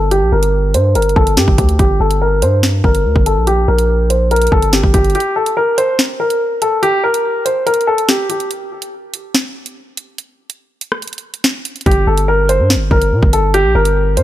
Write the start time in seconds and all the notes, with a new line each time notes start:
Already playing: G1
0.11 G4, closed hi-hat
0.22 A#1
0.32 G1 A#4
0.43 closed hi-hat
0.74 G2 C5, closed hi-hat
0.95 G1 A#4, closed hi-hat
1.02 closed hi-hat
1.09 closed hi-hat
1.16 G1 A4, kick
1.27 closed hi-hat
1.37 G2 G4, snare, closed hi-hat
1.48 G1, kick
1.58 D2 G4, kick, closed hi-hat
1.69 closed hi-hat
1.79 G1 G4, kick, closed hi-hat
2.00 G1 A4
2.11 closed hi-hat
2.22 A#4
2.42 G2 C5, closed hi-hat
2.63 snare, closed hi-hat
2.84 G1 A#4, kick
2.95 closed hi-hat
3.05 D2
3.16 G1, kick
3.26 A4, closed hi-hat
3.37 A#1
3.47 G4, closed hi-hat
3.68 A#1 A#4
3.79 closed hi-hat
4.10 C5, closed hi-hat
4.31 A#4, closed hi-hat
4.36 closed hi-hat
4.42 closed hi-hat
4.47 closed hi-hat
4.52 G1 A4, kick
4.62 closed hi-hat
4.73 G4, snare, closed hi-hat
4.83 G1, kick
4.94 G1 G4, kick, closed hi-hat
5.04 closed hi-hat
5.10 closed hi-hat
5.15 G4, closed hi-hat
5.20 closed hi-hat
5.36 A4
5.46 closed hi-hat
5.57 A#4
5.78 C5, closed hi-hat
5.99 snare, closed hi-hat
6.20 A#4
6.30 closed hi-hat
6.62 A4, closed hi-hat
6.83 G4, closed hi-hat
7.04 A#4
7.14 closed hi-hat
7.45 C5, closed hi-hat
7.66 A#4, closed hi-hat
7.74 closed hi-hat
7.81 closed hi-hat
7.87 A4
7.98 closed hi-hat
8.08 G4, snare, closed hi-hat
8.29 G4, closed hi-hat
8.40 closed hi-hat
8.51 closed hi-hat
8.82 closed hi-hat
9.14 closed hi-hat
9.35 snare, closed hi-hat
9.66 closed hi-hat
9.97 closed hi-hat
10.18 closed hi-hat
10.50 closed hi-hat
10.81 closed hi-hat
10.92 cross-stick
11.02 closed hi-hat
11.07 closed hi-hat
11.13 closed hi-hat
11.18 closed hi-hat
11.34 closed hi-hat
11.44 snare, closed hi-hat
11.65 closed hi-hat
11.76 closed hi-hat
11.81 closed hi-hat
11.86 G1 G4, kick, closed hi-hat
11.91 closed hi-hat
12.07 G1 A4
12.18 closed hi-hat
12.28 A#4
12.49 C5, closed hi-hat
12.60 G2
12.70 snare, closed hi-hat
12.75 G1
12.91 G1 A#4, kick
13.02 closed hi-hat
13.12 A#2
13.23 G1, kick
13.33 A4, closed hi-hat
13.54 G4, closed hi-hat
13.65 A#1
13.75 G1 A#4
13.85 closed hi-hat
14.17 G2 C5, closed hi-hat